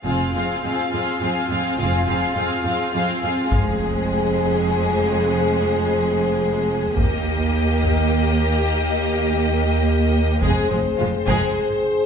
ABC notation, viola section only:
X:1
M:3/4
L:1/8
Q:1/4=104
K:Fm
V:1 name="Viola section"
[CF] [CF] [CF] [CF] [CF] [CF] | [CF] [CF] [CF] [CF] [CF] [CF] | A,6- | A,6 |
B,6- | B,6 | A, A, A, A, z2 |]